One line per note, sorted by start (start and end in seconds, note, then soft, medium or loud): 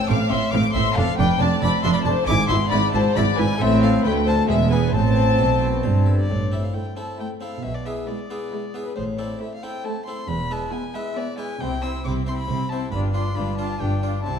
0.00 0.10 C4 medium
0.07 0.17 A1 medium
0.07 0.16 A2 medium
0.07 0.28 A2 medium
0.07 0.17 C4 medium
0.07 0.32 C5 medium
0.07 0.30 F5 loud
0.07 0.31 D6 medium
0.07 0.16 D6 loud
0.29 0.39 A1 medium
0.29 0.39 A2 medium
0.29 0.51 A2 medium
0.29 0.38 C4 medium
0.29 0.54 F4 medium
0.29 0.52 E5 loud
0.29 0.52 C6 loud
0.29 0.53 C6 loud
0.51 0.60 A1 medium
0.51 0.72 A2 medium
0.51 0.61 A2 loud
0.51 0.61 C4 medium
0.51 0.76 C5 medium
0.51 0.59 F5 loud
0.51 0.72 D6 loud
0.51 0.74 D6 loud
0.73 0.83 A1 medium
0.73 0.94 A2 medium
0.73 0.83 A2 medium
0.73 0.83 C4 medium
0.73 0.97 F4 medium
0.73 0.95 E5 loud
0.73 0.97 C6 loud
0.73 0.96 C6 loud
0.95 1.05 F1 medium
0.95 1.16 F2 medium
0.95 1.05 F2 loud
0.95 1.05 D4 medium
0.95 1.18 A4 medium
0.95 1.18 F5 loud
1.18 1.26 F1 loud
1.18 1.27 F2 medium
1.18 1.39 F2 medium
1.18 1.26 D4 medium
1.18 1.42 F4 medium
1.18 1.40 B4 loud
1.18 1.40 G5 loud
1.18 1.42 G5 medium
1.39 1.48 F1 loud
1.39 1.60 F2 medium
1.39 1.49 F2 medium
1.39 1.49 D4 medium
1.39 1.60 D5 loud
1.39 1.63 D5 medium
1.39 1.62 A5 loud
1.62 1.70 F1 medium
1.62 1.70 F2 medium
1.62 1.82 F2 medium
1.62 1.71 D4 medium
1.62 1.85 A4 medium
1.62 1.83 D5 loud
1.62 1.83 B5 loud
1.62 1.71 B5 loud
1.82 1.93 F1 loud
1.82 2.04 F2 medium
1.82 1.93 F2 loud
1.82 1.92 D4 medium
1.82 1.94 E5 loud
1.82 2.07 F5 medium
1.82 1.93 C6 loud
1.82 1.95 C6 loud
1.93 2.05 D5 medium
1.93 1.98 B5 medium
1.93 2.06 B5 loud
2.03 2.14 F1 medium
2.03 2.26 F2 medium
2.03 2.15 F2 medium
2.03 2.14 D4 medium
2.03 2.26 C5 medium
2.03 2.28 D5 medium
2.03 2.27 A5 loud
2.03 2.13 A5 medium
2.25 2.36 G#1 loud
2.25 2.36 G#2 loud
2.25 2.48 G#2 medium
2.25 2.36 E4 loud
2.25 2.49 G#5 loud
2.25 2.48 D6 loud
2.25 2.50 D6 loud
2.47 2.57 G#1 loud
2.47 2.69 G#2 medium
2.47 2.58 G#2 medium
2.47 2.73 B3 medium
2.47 2.58 E4 medium
2.47 2.55 E5 loud
2.47 2.71 C6 medium
2.47 2.71 C6 loud
2.69 2.80 G#1 loud
2.69 2.80 G#2 medium
2.69 2.92 G#2 medium
2.69 2.79 E4 medium
2.69 2.95 B4 medium
2.69 2.92 D5 loud
2.69 2.93 B5 loud
2.69 2.79 B5 medium
2.93 3.02 G#1 medium
2.93 3.14 G#2 medium
2.93 3.02 G#2 medium
2.93 3.17 E4 medium
2.93 3.02 E4 medium
2.93 3.15 C5 loud
2.93 3.15 A5 loud
2.93 3.03 A5 loud
3.14 3.24 G#1 loud
3.14 3.24 G#2 medium
3.14 3.36 G#2 medium
3.14 3.24 E4 medium
3.14 3.40 B4 medium
3.14 3.38 D5 loud
3.14 3.37 B5 loud
3.14 3.24 B5 loud
3.36 3.46 G#1 medium
3.36 3.46 G#2 medium
3.36 3.59 G#2 medium
3.36 3.46 E4 medium
3.36 3.61 E4 medium
3.36 3.60 B4 medium
3.36 3.59 G#5 loud
3.36 3.63 G#5 loud
3.57 4.02 A1 medium
3.57 4.01 A2 loud
3.57 4.01 A2 medium
3.57 4.01 C4 loud
3.57 3.65 A4 medium
3.57 3.81 E5 loud
3.57 3.82 E5 loud
3.81 3.99 E4 medium
3.81 3.89 A4 loud
3.81 3.99 A4 medium
3.81 4.05 F5 loud
3.81 4.04 F5 medium
4.02 4.48 D2 medium
4.02 4.46 D2 medium
4.02 4.49 A3 medium
4.02 4.25 B4 loud
4.02 4.12 G5 medium
4.02 4.26 G5 loud
4.25 4.44 F4 medium
4.25 4.43 A4 medium
4.25 4.33 C5 medium
4.25 4.49 A5 loud
4.25 4.50 A5 medium
4.48 4.94 E1 medium
4.48 4.93 E2 medium
4.48 4.91 E2 medium
4.48 4.71 G#3 medium
4.48 4.56 G#4 medium
4.48 4.72 E5 loud
4.48 4.74 E5 loud
4.71 4.94 B3 medium
4.71 4.88 E4 medium
4.71 4.89 G#4 medium
4.71 4.93 B4 medium
4.71 4.94 G#5 medium
4.94 5.39 A1 medium
4.94 5.36 A2 medium
4.94 5.40 A2 medium
4.94 6.07 C4 medium
4.94 6.07 C5 medium
4.94 6.05 A5 loud
5.17 5.41 C4 medium
5.39 5.85 B1 medium
5.39 5.80 B2 medium
5.39 5.85 B2 medium
5.39 5.63 A4 medium
5.61 5.85 E4 medium
5.83 6.30 G1 medium
5.83 6.25 G2 medium
5.83 6.30 G2 medium
5.83 6.08 C5 medium
6.06 6.29 A4 medium
6.20 6.55 D5 medium
6.30 6.65 A1 medium
6.30 6.64 A2 soft
6.30 6.65 A2 medium
6.52 6.84 C4 soft
6.52 6.85 E4 soft
6.52 6.84 A4 soft
6.52 6.66 E5 medium
6.64 6.75 F5 medium
6.74 7.08 A3 soft
6.74 7.08 E4 soft
6.74 7.08 C5 soft
6.74 6.97 G5 medium
6.97 7.29 C4 soft
6.97 7.29 E4 soft
6.97 7.29 A4 soft
6.97 7.19 A5 medium
7.18 7.52 A3 medium
7.18 7.52 E4 medium
7.18 7.52 C5 soft
7.18 7.28 G5 medium
7.41 7.57 C4 soft
7.41 7.57 E4 soft
7.41 7.58 A4 soft
7.41 7.64 F5 medium
7.63 7.98 B1 medium
7.63 7.97 B2 soft
7.63 7.98 B2 medium
7.63 7.76 E5 medium
7.74 7.87 D5 medium
7.85 8.18 B3 soft
7.85 8.18 E4 soft
7.85 8.18 G#4 soft
7.85 8.08 E5 medium
8.07 8.41 G#3 soft
8.07 8.40 E4 medium
8.07 8.41 B4 medium
8.07 8.74 D5 medium
8.30 8.62 B3 soft
8.30 8.62 E4 soft
8.30 8.62 G#4 soft
8.51 8.85 G#3 medium
8.51 8.84 E4 soft
8.51 8.85 B4 soft
8.74 8.90 B3 soft
8.74 8.91 E4 soft
8.74 8.91 G#4 soft
8.85 8.94 B4 medium
8.95 9.31 A1 medium
8.95 9.30 A2 soft
8.95 9.31 A2 medium
8.95 9.03 C5 medium
9.18 9.50 C4 soft
9.18 9.50 E4 soft
9.18 9.51 A4 soft
9.18 9.40 D5 medium
9.40 9.73 A3 medium
9.40 9.74 E4 medium
9.40 9.73 C5 medium
9.40 9.52 E5 medium
9.54 9.64 F5 medium
9.63 9.95 C4 soft
9.63 9.95 E4 soft
9.63 9.95 A4 soft
9.63 9.86 G5 medium
9.84 10.17 A3 medium
9.84 10.17 E4 medium
9.84 10.18 C5 medium
9.84 10.05 A5 medium
10.06 10.23 C4 soft
10.06 10.23 E4 soft
10.06 10.24 A4 soft
10.06 10.29 C6 medium
10.27 10.64 E1 medium
10.27 10.62 E2 soft
10.27 10.64 E2 medium
10.27 10.54 B5 medium
10.51 10.82 G#3 soft
10.51 10.82 E4 soft
10.51 10.83 B4 soft
10.51 10.73 A5 medium
10.72 11.05 B3 medium
10.72 11.05 E4 medium
10.72 11.05 G#4 medium
10.72 10.96 G#5 medium
10.94 11.26 G#3 soft
10.94 11.27 E4 soft
10.94 11.27 B4 soft
10.94 11.18 E5 medium
11.14 11.48 B3 medium
11.14 11.48 E4 medium
11.14 11.49 G#4 medium
11.14 11.38 D5 medium
11.38 11.54 G#3 soft
11.38 11.54 E4 soft
11.38 11.54 B4 soft
11.38 11.62 G#5 medium
11.59 11.97 C2 medium
11.59 11.96 C3 soft
11.59 11.97 C3 medium
11.59 11.81 C4 medium
11.59 11.82 E4 soft
11.59 11.81 G4 medium
11.59 11.84 G5 medium
11.82 12.04 C4 medium
11.82 12.14 E4 soft
11.82 12.04 E4 soft
11.82 12.03 G4 soft
11.82 12.14 C5 soft
11.82 12.04 E6 medium
12.04 12.41 C2 medium
12.04 12.41 C3 medium
12.04 12.40 C3 medium
12.04 12.26 C4 soft
12.04 12.27 E4 medium
12.04 12.24 G4 soft
12.04 12.12 D6 medium
12.26 12.47 C4 soft
12.26 12.58 E4 soft
12.26 12.49 E4 soft
12.26 12.46 G4 soft
12.26 12.58 C5 soft
12.26 12.32 C6 medium
12.37 12.71 B5 medium
12.47 12.85 C2 medium
12.47 12.83 C3 soft
12.47 12.85 C3 medium
12.47 12.69 C4 medium
12.47 12.70 E4 medium
12.47 12.68 G4 soft
12.69 12.92 C4 soft
12.69 12.92 E4 soft
12.69 12.87 E4 soft
12.69 12.91 G4 soft
12.69 12.87 C5 soft
12.69 12.91 A5 medium
12.91 13.29 G1 medium
12.91 13.28 G2 medium
12.91 13.29 G2 medium
12.91 13.13 D4 medium
12.91 13.12 F4 soft
12.91 13.12 G4 medium
12.91 12.99 B5 medium
13.13 13.35 D4 soft
13.13 13.35 F4 soft
13.13 13.46 F4 soft
13.13 13.34 G4 soft
13.13 13.46 D5 soft
13.13 13.37 C6 medium
13.35 13.73 G1 medium
13.35 13.73 G2 medium
13.35 13.72 G2 soft
13.35 13.57 D4 soft
13.35 13.57 F4 soft
13.35 13.57 G4 soft
13.35 13.57 B5 medium
13.58 13.80 D4 soft
13.58 13.79 F4 soft
13.58 13.90 F4 soft
13.58 13.78 G4 soft
13.58 13.90 D5 soft
13.58 13.82 A5 medium
13.79 14.17 G1 medium
13.79 14.16 G2 soft
13.79 14.17 G2 medium
13.79 14.01 D4 medium
13.79 14.01 F4 soft
13.79 14.00 G4 soft
13.79 14.02 G5 medium
14.02 14.24 D4 soft
14.02 14.24 F4 soft
14.02 14.19 F4 soft
14.02 14.22 G4 soft
14.02 14.19 D5 soft
14.23 14.39 C2 medium
14.23 14.39 C3 medium
14.23 14.39 C3 soft
14.23 14.39 C4 medium
14.23 14.39 E4 medium
14.23 14.39 G4 medium
14.23 14.39 A5 medium